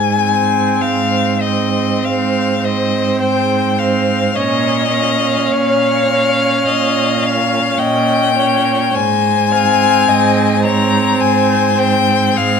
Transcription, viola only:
0.20 1.41 C4 soft
1.43 2.62 C4 soft
2.64 3.76 C4 soft
3.79 4.35 C4 soft
4.36 4.93 C#4 soft
4.94 6.07 C#4 soft
6.09 7.21 C#4 soft
7.21 8.34 C#4 soft
8.36 8.93 C#4 soft
9.51 10.62 C4 soft
10.64 11.76 C4 soft
11.79 12.60 C4 soft

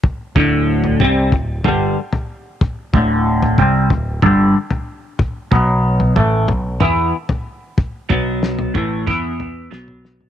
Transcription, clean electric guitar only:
0.36 0.99 D2 medium
0.36 1.00 A2 medium
0.36 1.00 D3 medium
1.00 1.32 C3 medium
1.00 1.32 G3 medium
1.00 1.32 C4 loud
1.33 1.58 A2 medium
1.65 1.96 G2 medium
1.65 1.96 D3 medium
1.65 1.96 G3 medium
2.94 3.57 D2 medium
2.94 3.58 A2 medium
2.94 3.58 D3 medium
3.58 3.90 C3 medium
3.58 3.90 G3 loud
3.58 3.90 C4 loud
3.90 4.16 D2 medium
3.90 4.16 A2 medium
4.23 4.54 G2 medium
4.23 4.54 D3 medium
4.23 4.54 G3 medium
5.51 6.15 B2 medium
5.51 6.16 F#3 medium
5.51 6.16 B3 medium
6.16 6.48 A2 loud
6.16 6.48 E3 loud
6.16 6.48 A3 loud
6.49 6.75 B2 medium
6.49 6.75 F#3 medium
6.80 7.12 E3 medium
6.80 7.13 B3 medium
6.80 7.13 E4 medium
8.09 8.73 B2 medium
8.09 8.74 F#3 medium
8.09 8.74 B3 medium
8.74 9.06 A2 medium
8.74 9.05 E3 medium
8.74 9.06 A3 loud
9.07 9.70 E3 medium
9.07 9.70 B3 medium
9.07 9.71 E4 loud
9.71 10.29 B2 medium
9.71 10.29 F#3 medium
9.71 10.29 B3 loud

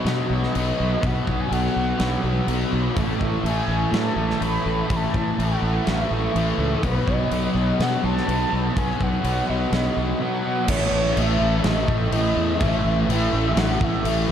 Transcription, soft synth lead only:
0.00 1.07 D#5 loud
1.06 1.42 F#5 loud
1.40 1.52 G#5 loud
1.52 2.44 F#5 loud
3.47 3.97 G#5 loud
3.95 4.43 A5 loud
4.45 4.97 B5 loud
4.96 5.44 A5 loud
5.42 5.90 F#5 loud
5.89 6.60 E5 medium
6.86 7.10 B4 medium
7.09 7.83 D#5 loud
7.82 8.04 F#5 loud
8.04 8.78 A5 loud
8.77 9.04 G#5 loud
9.03 9.50 F#5 loud
9.49 10.20 D#5 medium
10.21 10.70 F#5 loud
10.69 11.19 C#5 loud
11.17 11.65 E5 loud
11.64 12.12 D#5 loud
12.12 12.62 D#5 loud
12.61 13.09 E5 loud
13.10 13.60 E5 loud
13.59 13.85 F#5 loud
13.84 14.30 E5 medium

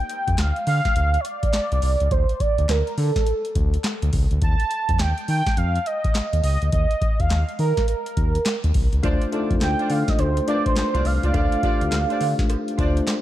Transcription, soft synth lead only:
0.00 0.40 G5 loud
0.39 0.67 F5 loud
0.67 1.22 F5 loud
1.21 1.26 C#5 medium
1.25 2.13 D5 loud
2.11 2.42 C5 medium
2.40 2.71 D5 medium
2.69 3.00 A#4 medium
2.98 3.56 A4 medium
4.42 5.02 A5 loud
5.00 5.28 G5 loud
5.29 5.59 G5 loud
5.58 5.88 F5 loud
5.86 6.43 D#5 loud
6.44 6.71 D#5 medium
6.73 7.21 D#5 medium
7.20 7.59 F5 loud
7.60 7.86 A#4 medium
7.89 8.71 A#4 medium
9.62 9.92 G5 loud
9.91 10.11 F5 medium
10.09 10.21 D#5 medium
10.19 10.48 C5 medium
10.48 10.65 D5 medium
10.66 10.76 C5 medium
10.77 11.07 C5 medium
11.06 11.34 F5 loud
11.35 13.04 F5 loud

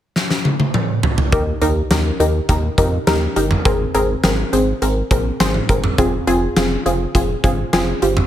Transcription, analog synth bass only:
1.32 1.53 D#2 loud
1.61 1.82 D#2 loud
1.91 2.11 D#2 loud
2.20 2.40 D#2 loud
2.49 2.69 D#2 loud
2.78 2.98 F2 loud
3.07 3.28 D#2 loud
3.36 3.57 G1 medium
3.65 3.86 G#1 loud
3.95 4.15 G#1 loud
4.24 4.44 G#1 medium
4.53 4.73 G#1 loud
4.82 5.02 G#1 loud
5.11 5.31 A#1 medium
5.40 5.60 G#1 loud
5.69 5.90 G1 medium
5.98 6.19 F1 loud
6.28 6.48 F1 loud
6.57 6.77 F1 loud
6.86 7.06 F1 loud
7.15 7.35 F1 loud
7.44 7.64 G1 loud
7.73 7.94 F1 loud
8.02 8.23 G1 medium

